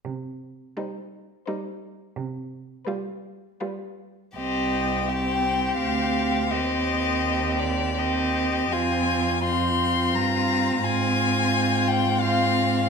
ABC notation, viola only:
X:1
M:3/4
L:1/8
Q:1/4=84
K:Cm
V:1 name="Viola"
z2 G,2 G,2 | z2 G,2 G,2 | C2 C4 | C4 C2 |
C2 C4 | C4 C2 |]